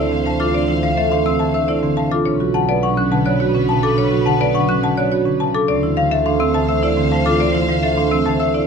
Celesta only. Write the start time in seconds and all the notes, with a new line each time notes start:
0.26 F5
0.40 D6
0.83 F5
0.97 E5
1.11 C6
1.26 E6
1.40 E5
1.54 E6
1.97 F5
2.12 D6
2.54 A5
2.69 F#5
2.83 C#6
2.97 F#6
3.12 F#5
3.26 F#6
3.69 A5
3.83 D6
4.26 A5
4.40 F#5
4.55 C#6
4.69 F#6
4.83 F#5
4.97 F#6
5.40 A5
5.55 D6
5.97 F5
6.12 E5
6.26 C6
6.40 E6
6.55 E5
6.69 E6
7.12 F5
7.26 D6
7.69 F5
7.83 E5
7.97 C6
8.11 E6
8.26 E5
8.40 E6